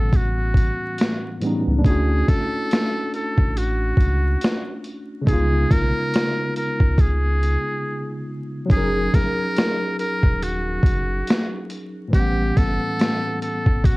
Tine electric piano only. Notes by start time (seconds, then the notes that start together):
Already playing: A2 E3 G3 B3 C#4 F#5
1.41 A2 E3 G3 B3
1.45 C#4 D#4
1.79 A3 D4
1.84 C#4 E4
1.90 F#4
5.22 C#3 G#3
5.27 B3 D#4
5.33 F4
8.66 F#3 C#4
8.72 D#4 G#4
8.77 A#4
12.08 A2 E3
12.13 G3 B3
12.17 C#4 F#5